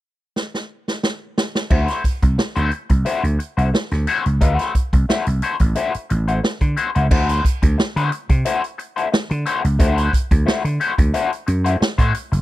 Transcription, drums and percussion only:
0.36 snare
0.54 snare
0.88 snare
1.03 snare
1.38 snare
1.55 snare
1.70 kick, crash
1.88 snare, closed hi-hat
2.04 kick, closed hi-hat
2.22 kick, closed hi-hat
2.39 snare
2.56 closed hi-hat
2.71 closed hi-hat
2.89 kick, closed hi-hat
3.06 closed hi-hat
3.24 closed hi-hat
3.40 closed hi-hat
3.58 closed hi-hat
3.75 snare
3.91 snare, closed hi-hat
4.07 closed hi-hat
4.26 closed hi-hat
4.41 kick, closed hi-hat
4.59 snare, closed hi-hat
4.75 kick, closed hi-hat
4.93 kick, closed hi-hat
5.10 snare
5.26 closed hi-hat
5.42 closed hi-hat
5.60 kick, closed hi-hat
5.75 closed hi-hat
5.94 closed hi-hat
6.10 closed hi-hat
6.28 closed hi-hat
6.44 snare
6.61 kick, closed hi-hat
6.77 closed hi-hat
6.95 closed hi-hat
7.11 kick, crash
7.29 closed hi-hat
7.45 kick, closed hi-hat
7.62 kick, closed hi-hat
7.79 snare
7.97 closed hi-hat
8.12 closed hi-hat
8.29 kick, closed hi-hat
8.45 closed hi-hat
8.64 closed hi-hat
8.79 closed hi-hat
8.97 closed hi-hat
9.14 snare
9.31 closed hi-hat
9.46 closed hi-hat
9.65 closed hi-hat
9.80 kick, closed hi-hat
9.98 closed hi-hat
10.13 kick, closed hi-hat
10.31 kick, closed hi-hat
10.48 snare
10.65 closed hi-hat
10.81 closed hi-hat
10.98 kick, closed hi-hat
11.14 closed hi-hat
11.33 closed hi-hat
11.47 closed hi-hat
11.66 closed hi-hat
11.82 snare
11.98 kick, closed hi-hat
12.14 closed hi-hat
12.33 closed hi-hat

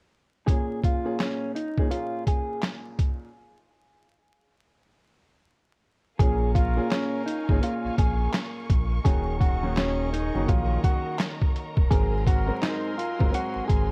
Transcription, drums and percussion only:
0.48 kick, closed hi-hat
0.84 kick, closed hi-hat
1.20 snare, clap, closed hi-hat
1.56 closed hi-hat
1.78 kick
1.91 closed hi-hat
2.27 kick, closed hi-hat
2.62 snare, clap, closed hi-hat
2.98 kick, closed hi-hat
6.19 kick, closed hi-hat
6.55 kick, closed hi-hat
6.91 snare, clap, closed hi-hat
7.28 closed hi-hat
7.49 kick
7.63 closed hi-hat
7.98 kick, closed hi-hat
8.34 snare, clap, closed hi-hat
8.70 kick, closed hi-hat
9.05 kick, closed hi-hat
9.41 kick, closed hi-hat
9.77 snare, clap, closed hi-hat
10.14 closed hi-hat
10.48 kick, closed hi-hat
10.84 kick, closed hi-hat
11.19 snare, clap, closed hi-hat
11.42 kick
11.56 closed hi-hat
11.77 kick
11.91 kick, closed hi-hat
12.27 kick, closed hi-hat
12.62 snare, clap, closed hi-hat
12.99 closed hi-hat
13.21 kick
13.34 closed hi-hat
13.70 kick, closed hi-hat

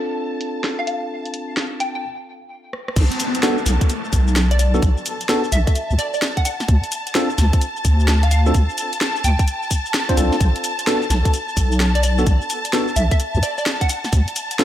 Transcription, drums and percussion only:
0.41 open hi-hat
0.64 snare
0.87 open hi-hat
1.25 open hi-hat
1.34 open hi-hat
1.57 snare
1.80 open hi-hat
2.73 cross-stick
2.88 cross-stick
2.96 kick, closed hi-hat, crash, shaker
3.12 open hi-hat, shaker
3.20 open hi-hat, shaker
3.35 closed hi-hat, shaker
3.43 snare, closed hi-hat, shaker
3.58 shaker
3.66 snare, open hi-hat, shaker
3.81 kick, closed hi-hat, shaker
3.90 closed hi-hat, shaker
4.05 shaker
4.13 kick, open hi-hat, shaker
4.28 shaker
4.36 snare, closed hi-hat, shaker
4.51 closed hi-hat, shaker
4.59 open hi-hat, shaker
4.74 shaker
4.82 kick, closed hi-hat, shaker
4.98 shaker
5.06 open hi-hat, shaker
5.21 closed hi-hat, shaker
5.29 snare, closed hi-hat, shaker
5.44 shaker
5.52 open hi-hat, shaker
5.67 kick, closed hi-hat, shaker
5.75 closed hi-hat, shaker
5.91 shaker
5.99 open hi-hat, shaker
6.14 shaker
6.22 snare, closed hi-hat, shaker
6.37 kick, closed hi-hat, shaker
6.45 open hi-hat, shaker
6.60 snare, shaker
6.68 kick, closed hi-hat, shaker
6.84 open hi-hat, shaker
6.92 open hi-hat, shaker
7.07 closed hi-hat, shaker
7.15 snare, closed hi-hat, shaker
7.30 shaker
7.38 snare, open hi-hat, shaker
7.53 kick, closed hi-hat, shaker
7.61 closed hi-hat, shaker
7.77 shaker
7.85 kick, open hi-hat, shaker
8.00 shaker
8.08 snare, closed hi-hat, shaker
8.23 closed hi-hat, shaker
8.31 open hi-hat, shaker
8.46 shaker
8.54 kick, closed hi-hat, shaker
8.70 shaker
8.78 open hi-hat, shaker
8.93 closed hi-hat, shaker
9.01 snare, closed hi-hat, shaker
9.16 shaker
9.24 open hi-hat, shaker
9.39 kick, closed hi-hat, shaker
9.48 closed hi-hat, shaker
9.63 shaker
9.71 kick, open hi-hat, shaker
9.86 shaker
9.94 snare, closed hi-hat, shaker
10.09 kick, closed hi-hat, shaker
10.17 open hi-hat, shaker
10.32 snare, shaker
10.40 kick, closed hi-hat, shaker
10.56 open hi-hat, shaker
10.64 open hi-hat, shaker
10.79 closed hi-hat, shaker
10.87 snare, closed hi-hat, shaker
11.02 shaker
11.10 snare, open hi-hat, shaker
11.25 kick, closed hi-hat, shaker
11.34 closed hi-hat, shaker
11.49 shaker
11.57 kick, open hi-hat, shaker
11.72 shaker
11.80 snare, closed hi-hat, shaker
11.95 closed hi-hat, shaker
12.03 open hi-hat, shaker
12.18 shaker
12.27 kick, closed hi-hat, shaker
12.42 shaker
12.50 open hi-hat, shaker
12.65 closed hi-hat, shaker
12.73 snare, closed hi-hat, shaker
12.88 shaker
12.96 open hi-hat, shaker
13.11 kick, closed hi-hat, shaker
13.20 closed hi-hat, shaker
13.35 shaker
13.43 open hi-hat, shaker
13.58 shaker
13.66 snare, closed hi-hat, shaker
13.81 kick, closed hi-hat, shaker
13.89 open hi-hat, shaker
14.05 snare, shaker
14.13 kick, closed hi-hat, shaker
14.28 open hi-hat, shaker
14.36 open hi-hat, shaker
14.51 closed hi-hat, shaker
14.59 snare, closed hi-hat, shaker

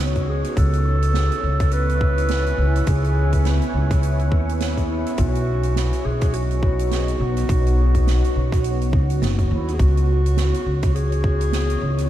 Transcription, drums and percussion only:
0.15 kick, closed hi-hat
0.44 closed hi-hat
0.57 kick, closed hi-hat
0.73 closed hi-hat
1.02 closed hi-hat
1.14 snare, closed hi-hat
1.32 closed hi-hat
1.60 kick, closed hi-hat
1.71 closed hi-hat
1.89 closed hi-hat
2.01 kick
2.18 closed hi-hat
2.28 snare, closed hi-hat
2.46 closed hi-hat
2.76 closed hi-hat
2.87 kick, closed hi-hat
3.04 closed hi-hat
3.32 kick, closed hi-hat
3.45 snare, closed hi-hat
3.62 closed hi-hat
3.91 kick, closed hi-hat
4.03 closed hi-hat
4.19 closed hi-hat
4.32 kick
4.49 closed hi-hat
4.60 snare, closed hi-hat
4.77 kick, closed hi-hat
5.06 closed hi-hat
5.18 kick, closed hi-hat
5.35 closed hi-hat
5.63 closed hi-hat
5.76 snare, closed hi-hat
5.93 closed hi-hat
6.21 kick, closed hi-hat
6.33 closed hi-hat
6.51 closed hi-hat
6.63 kick
6.79 closed hi-hat
6.91 snare, closed hi-hat
7.08 closed hi-hat
7.37 closed hi-hat
7.49 kick, closed hi-hat
7.66 closed hi-hat
7.95 kick, closed hi-hat
8.07 snare, closed hi-hat
8.24 closed hi-hat
8.52 kick, closed hi-hat
8.64 closed hi-hat
8.81 closed hi-hat
8.93 kick
9.10 closed hi-hat
9.22 snare, closed hi-hat
9.38 kick, closed hi-hat
9.68 closed hi-hat
9.79 kick, closed hi-hat
9.97 closed hi-hat
10.26 closed hi-hat
10.37 snare, closed hi-hat
10.54 closed hi-hat
10.82 kick, closed hi-hat
10.95 closed hi-hat
11.12 closed hi-hat
11.24 kick
11.41 closed hi-hat
11.53 snare, closed hi-hat
11.70 closed hi-hat
11.98 closed hi-hat

